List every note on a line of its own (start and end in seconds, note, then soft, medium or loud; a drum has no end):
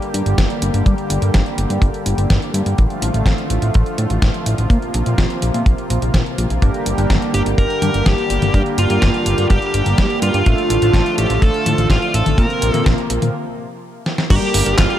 0.00 4.66 D3 medium
0.00 2.74 G3 medium
0.00 2.74 A#3 medium
0.00 2.74 G4 medium
0.00 closed hi-hat soft
0.14 0.23 G2 medium
0.14 closed hi-hat medium
0.26 0.35 G1 medium
0.26 closed hi-hat soft
0.38 0.47 G1 loud
0.38 kick medium
0.38 snare loud
0.38 closed hi-hat soft
0.50 closed hi-hat soft
0.62 0.71 G1 medium
0.62 closed hi-hat medium
0.74 0.83 G1 medium
0.74 closed hi-hat medium
0.86 0.95 G2 loud
0.86 kick loud
0.86 closed hi-hat soft
0.98 closed hi-hat soft
1.10 1.19 G1 medium
1.10 closed hi-hat medium
1.22 1.31 G2 medium
1.22 closed hi-hat soft
1.34 1.43 G1 loud
1.34 kick loud
1.34 snare loud
1.34 closed hi-hat soft
1.46 closed hi-hat soft
1.58 1.67 G1 medium
1.58 closed hi-hat medium
1.70 1.79 G2 medium
1.70 closed hi-hat medium
1.82 1.90 G1 loud
1.82 kick loud
1.82 closed hi-hat medium
1.94 closed hi-hat soft
2.06 2.15 G1 medium
2.06 closed hi-hat medium
2.18 2.27 G1 medium
2.18 closed hi-hat soft
2.30 2.39 G2 loud
2.30 kick loud
2.30 snare loud
2.30 closed hi-hat soft
2.42 closed hi-hat soft
2.54 2.62 G2 loud
2.54 closed hi-hat medium
2.66 2.75 G2 medium
2.66 closed hi-hat soft
2.78 2.87 A1 loud
2.78 6.58 F3 medium
2.78 4.68 A3 medium
2.78 6.58 F4 medium
2.78 kick loud
2.78 closed hi-hat soft
2.90 closed hi-hat soft
3.02 3.11 A1 medium
3.02 closed hi-hat medium
3.14 3.23 A1 medium
3.14 closed hi-hat soft
3.26 3.34 A1 loud
3.26 kick loud
3.26 snare loud
3.26 closed hi-hat soft
3.38 closed hi-hat soft
3.50 3.59 A1 medium
3.50 closed hi-hat medium
3.62 3.71 A1 medium
3.62 closed hi-hat soft
3.74 3.83 A1 loud
3.74 kick loud
3.74 closed hi-hat soft
3.86 closed hi-hat soft
3.98 4.07 A2 medium
3.98 closed hi-hat medium
4.10 4.19 A1 medium
4.10 closed hi-hat soft
4.22 4.31 A1 loud
4.22 kick loud
4.22 snare loud
4.22 closed hi-hat soft
4.34 closed hi-hat soft
4.46 4.55 A1 medium
4.46 closed hi-hat medium
4.58 4.67 A1 medium
4.58 closed hi-hat soft
4.70 4.79 A#2 loud
4.70 6.60 C3 medium
4.70 10.42 A#3 medium
4.70 kick loud
4.70 closed hi-hat soft
4.82 closed hi-hat soft
4.94 5.03 A#1 medium
4.94 closed hi-hat medium
5.06 5.15 A#2 medium
5.06 closed hi-hat soft
5.18 5.27 A#1 loud
5.18 kick medium
5.18 snare loud
5.18 closed hi-hat soft
5.30 closed hi-hat soft
5.42 5.51 A#1 medium
5.42 closed hi-hat medium
5.54 5.63 A#2 medium
5.54 closed hi-hat soft
5.66 5.75 A#1 loud
5.66 kick loud
5.66 closed hi-hat soft
5.78 closed hi-hat soft
5.90 5.99 A#1 medium
5.90 closed hi-hat medium
6.02 6.11 A#1 medium
6.02 closed hi-hat soft
6.14 6.23 A#1 medium
6.14 kick loud
6.14 snare loud
6.14 closed hi-hat soft
6.26 closed hi-hat soft
6.38 6.47 A#1 medium
6.38 closed hi-hat medium
6.50 6.59 A#1 medium
6.50 closed hi-hat soft
6.62 6.71 G1 loud
6.62 12.34 D3 medium
6.62 10.42 G3 medium
6.62 6.95 A#3 medium
6.62 6.95 D4 medium
6.62 6.95 G4 medium
6.62 10.42 G4 medium
6.62 6.95 A#4 medium
6.62 kick loud
6.62 closed hi-hat soft
6.74 closed hi-hat soft
6.86 6.95 G1 medium
6.86 closed hi-hat medium
6.98 7.06 G1 medium
6.98 8.51 A#3 medium
6.98 8.51 D4 medium
6.98 8.51 G4 medium
6.98 8.51 A#4 medium
6.98 closed hi-hat soft
7.10 7.19 G1 loud
7.10 kick loud
7.10 snare loud
7.10 closed hi-hat soft
7.22 closed hi-hat soft
7.34 7.43 G1 medium
7.34 7.41 G4 medium
7.34 closed hi-hat medium
7.46 7.54 G1 medium
7.46 closed hi-hat soft
7.58 7.67 G1 loud
7.58 8.08 A#4 loud
7.58 kick loud
7.58 closed hi-hat soft
7.70 closed hi-hat soft
7.82 7.91 G2 medium
7.82 closed hi-hat medium
7.82 high tom medium
7.94 8.03 G1 medium
7.94 closed hi-hat soft
8.06 8.15 G1 loud
8.06 8.53 G4 medium
8.06 kick loud
8.06 snare loud
8.06 closed hi-hat soft
8.18 closed hi-hat soft
8.30 8.39 G1 medium
8.30 closed hi-hat medium
8.42 8.51 G1 medium
8.42 closed hi-hat soft
8.42 high tom medium
8.54 8.63 G2 loud
8.54 8.87 A#3 medium
8.54 8.87 D4 medium
8.54 8.87 G4 medium
8.54 8.61 G4 loud
8.54 8.87 A#4 medium
8.54 kick loud
8.54 closed hi-hat soft
8.66 closed hi-hat soft
8.78 8.87 G1 medium
8.78 9.47 F4 loud
8.78 closed hi-hat medium
8.90 8.99 G2 medium
8.90 10.43 A#3 medium
8.90 10.43 D4 medium
8.90 10.43 G4 medium
8.90 10.43 A#4 medium
8.90 closed hi-hat soft
9.02 9.11 G1 loud
9.02 kick medium
9.02 snare loud
9.02 closed hi-hat medium
9.14 closed hi-hat soft
9.26 9.35 G1 medium
9.26 closed hi-hat medium
9.38 9.47 G2 medium
9.38 closed hi-hat soft
9.50 9.59 G1 loud
9.50 10.18 G4 medium
9.50 kick loud
9.50 closed hi-hat medium
9.62 closed hi-hat soft
9.74 9.83 G1 medium
9.74 closed hi-hat medium
9.86 9.95 G1 medium
9.86 closed hi-hat soft
9.98 10.07 G2 loud
9.98 kick loud
9.98 snare loud
9.98 closed hi-hat soft
10.10 closed hi-hat soft
10.22 10.31 G2 loud
10.22 11.14 F4 medium
10.22 closed hi-hat medium
10.34 10.43 G2 medium
10.34 closed hi-hat soft
10.46 10.55 A1 loud
10.46 12.36 F3 medium
10.46 12.36 A3 medium
10.46 10.79 A3 medium
10.46 10.79 D4 medium
10.46 10.79 F4 medium
10.46 13.31 F4 medium
10.46 10.79 A4 medium
10.46 kick loud
10.46 closed hi-hat medium
10.58 closed hi-hat soft
10.70 10.79 A1 medium
10.70 closed hi-hat medium
10.82 10.91 A1 medium
10.82 12.35 A3 medium
10.82 12.35 D4 medium
10.82 12.35 F4 medium
10.82 12.35 A4 medium
10.82 closed hi-hat medium
10.93 11.02 A1 loud
10.93 kick medium
10.93 snare loud
10.93 closed hi-hat medium
11.06 closed hi-hat soft
11.18 11.27 A1 medium
11.18 11.43 G4 medium
11.18 closed hi-hat medium
11.30 11.39 A1 medium
11.30 closed hi-hat medium
11.42 11.51 A1 loud
11.42 11.87 A4 medium
11.42 kick loud
11.42 closed hi-hat medium
11.54 closed hi-hat soft
11.66 11.75 A2 medium
11.66 closed hi-hat medium
11.66 high tom medium
11.78 11.87 A1 medium
11.78 closed hi-hat soft
11.90 11.98 A1 loud
11.90 12.13 F4 medium
11.90 kick medium
11.90 snare loud
11.90 closed hi-hat soft
12.02 closed hi-hat soft
12.14 12.23 A1 loud
12.14 12.38 A4 medium
12.14 closed hi-hat medium
12.26 12.35 A1 medium
12.26 closed hi-hat medium
12.26 high tom medium
12.38 12.47 A#2 loud
12.38 13.33 C3 medium
12.38 13.33 F3 medium
12.38 12.71 A#3 medium
12.38 13.33 A#3 medium
12.38 12.71 C4 medium
12.38 12.71 F4 medium
12.38 12.71 A#4 medium
12.38 12.72 A#4 medium
12.38 kick loud
12.38 closed hi-hat medium
12.50 closed hi-hat soft
12.62 12.71 A#1 medium
12.62 closed hi-hat medium
12.72 12.83 A#2 medium
12.72 13.34 A#3 medium
12.72 13.34 C4 medium
12.72 13.34 F4 medium
12.72 12.83 A4 medium
12.72 13.34 A#4 medium
12.72 closed hi-hat medium
12.72 high tom medium
12.86 12.95 A#1 loud
12.86 kick loud
12.86 snare loud
12.86 closed hi-hat medium
12.98 closed hi-hat soft
13.10 13.19 A#1 medium
13.10 closed hi-hat medium
13.22 13.31 A#2 medium
13.22 closed hi-hat medium
13.22 high tom medium
14.06 snare medium
14.18 snare medium
14.30 14.39 G1 loud
14.30 14.99 D3 medium
14.30 14.41 G3 loud
14.30 14.99 G3 medium
14.30 14.63 A#3 medium
14.30 14.99 A#3 medium
14.30 14.63 D4 medium
14.30 14.63 G4 medium
14.30 14.99 G4 medium
14.30 14.75 G4 medium
14.30 14.63 A#4 medium
14.30 kick loud
14.30 closed hi-hat medium
14.30 crash loud
14.42 14.48 G3 loud
14.42 closed hi-hat soft
14.54 14.63 G1 medium
14.54 14.64 G3 medium
14.54 open hi-hat loud
14.66 14.75 G1 medium
14.66 14.99 A#3 medium
14.66 14.99 D4 medium
14.66 14.99 G4 medium
14.66 14.76 G4 medium
14.66 14.99 A#4 medium
14.66 closed hi-hat medium
14.78 14.87 G1 loud
14.78 14.88 C4 loud
14.78 14.99 F4 medium
14.78 kick loud
14.78 snare loud
14.78 clap loud
14.78 closed hi-hat medium
14.90 14.99 G4 loud
14.90 closed hi-hat soft